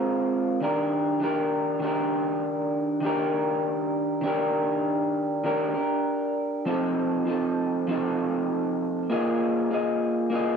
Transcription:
Already playing: G#3 C4 F4 A#4
0.60 D#3 D4 G4 A#4
1.20 D#3 D4 G4
1.24 A#4
1.79 D#3 D4
1.84 G4 A#4
3.00 D#3 D4
3.05 G4 A#4
4.21 D#3 D4
4.26 G4 A#4
5.44 D#3 D4 G4 A#4
5.74 D4 G4 A#4
6.65 F3 C4 D#4 A4
7.25 F3 C4 D#4
7.30 A4
7.87 F3 C4 D#4
7.92 A4
9.10 A#3 F4 G#4 D#5
9.70 A#3 F4 G#4 D#5
10.30 A#3 F4
10.34 G#4 D#5

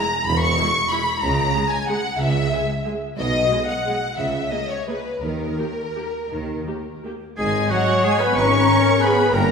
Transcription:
Already playing: A#5
0.25 E1 E2 B5
0.40 C#6
0.59 G#3 E4
0.90 G#3 E4 B5
1.20 C#2 C#3 A#5
1.55 G#3 G#4
1.70 G#5
1.87 G#3 G#4 F#5
2.19 C#2 C#3 E5
2.52 G#3 G#4
2.85 G#3 G#4
3.17 B1 B2 D#5
3.51 G#3 G#4
3.68 F#5
3.85 G#3 G#4
4.18 C#2 C#3 E5
4.51 A#3 G#4 D#5
4.70 C#5
4.88 A#3 G#4 B4
5.22 D#2 D#3 A#4
5.59 A#3 G4
5.96 A#3 G4
6.30 D#2 D#3
6.67 A#3 G4
7.04 A#3 G4
7.37 G#1 G#3 G#4 D#5 G#5
7.70 F#3 F#4 C#5 D#5 F#5
8.04 G#3 G#4 D#5 G#5
8.19 B3 B4 G#5 B5
8.34 G#1 C#4 B4 C#5 A#5 C#6
8.68 A#4
9.01 B3 G#4 B4 G#5 B5
9.32 G1 A#3 A#4 G5 A#5

